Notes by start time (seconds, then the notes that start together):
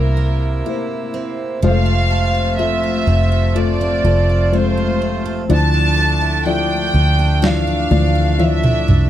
Already playing: C2 C3 A#3 E4 A#4 C5
0.17 A#4
0.66 A#3 E4 C5
1.14 C4
1.62 F1 C3 F3 G#3 A3 F4 C5 F5
1.70 A3
1.86 C4
2.11 A4
2.35 F4
2.59 A3 C4 F4 A4 E5
2.83 F4
3.07 F1 C4
3.32 A4
3.55 F3 A3 F4 C5 D5
3.81 C4
4.04 F1 A3 F4 A4 C5
4.29 F4
4.52 G#3 C4 F4 C5
4.58 A3
4.77 F4
5.02 C4
5.25 A4
5.49 D2 D3 F3 A3 D4 E4 D5 A5
5.74 D4
5.98 A4
6.21 E4
6.45 F3 D4 E4 D5 G5
6.94 D2 D4
7.19 A4
7.42 D3 E3 F3 D5, snare
7.46 F5
7.67 D4
7.91 D2 E3 F3 A4 D5, high tom
8.15 E4
8.39 F3 D4 E4 C#5, mid tom
8.43 D5 E5
8.63 E4, mid tom
8.88 C2 D4, floor tom